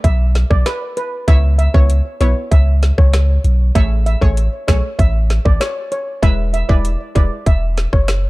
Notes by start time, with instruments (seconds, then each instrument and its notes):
0.04 sub bass B1, steel pan E5, kick, closed hi-hat
0.35 snare, closed hi-hat
0.50 sub bass B1, steel pan D5, kick, cross-stick
0.66 steel pan B4, cross-stick, snare, closed hi-hat
0.97 steel pan B4, closed hi-hat
1.28 sub bass C#2, synth pluck B3 E4 C#5, steel pan E5, kick, closed hi-hat
1.59 steel pan E5, closed hi-hat
1.74 sub bass C#2, synth pluck B3 E4 C#5, steel pan C#5, kick
1.90 closed hi-hat
2.21 sub bass B1, synth pluck B3 E4 C#5, steel pan C#5, closed hi-hat
2.51 sub bass C#2, steel pan E5, kick, closed hi-hat
2.83 snare, closed hi-hat
2.98 sub bass C#2, steel pan C#5, kick, cross-stick
3.13 cross-stick, snare, closed hi-hat
3.44 sub bass B1, closed hi-hat
3.75 sub bass A1, synth pluck A3 G#4 C#5, steel pan E5, kick, closed hi-hat
4.06 steel pan E5, closed hi-hat
4.21 sub bass A1, synth pluck A3 G#4 C#5, steel pan C#5, kick
4.37 closed hi-hat
4.68 sub bass B1, synth pluck A3 G#4 C#5, steel pan C#5, kick, cross-stick, snare, closed hi-hat
4.99 sub bass A1, steel pan E5, kick, closed hi-hat
5.30 snare, closed hi-hat
5.45 sub bass A1, steel pan D5, kick, cross-stick
5.61 steel pan C#5, cross-stick, snare, closed hi-hat
5.92 steel pan C#5, closed hi-hat
6.22 sub bass E1, synth pluck G#3 E4 B4, steel pan E5, kick, closed hi-hat
6.54 steel pan E5, closed hi-hat
6.69 sub bass E1, synth pluck G#3 E4 B4, steel pan D5, kick
6.85 closed hi-hat
7.15 sub bass E1, synth pluck G#3 E4 B4, steel pan D5, kick, closed hi-hat
7.46 sub bass E1, steel pan E5, kick, closed hi-hat
7.77 snare, closed hi-hat
7.93 sub bass F#1, steel pan C#5, kick, cross-stick
8.08 cross-stick, snare, closed hi-hat